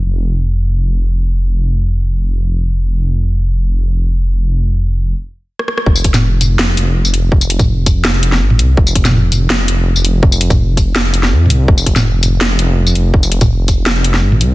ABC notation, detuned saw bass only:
X:1
M:4/4
L:1/16
Q:1/4=165
K:Fm
V:1 name="Detuned saw bass" clef=bass
F,,,16- | F,,,16- | F,,,16- | F,,,8 z8 |
F,,,8- F,,,2 F,,,3 F,,,3 | z12 A,,,2 C,,2 | F,,,8- F,,,2 F,,,3 F,,,3 | F,,,12 F,,2 C,,2 |
F,,,8- F,,,2 F,,,3 F,,,3 | z12 A,,,2 C,,2 |]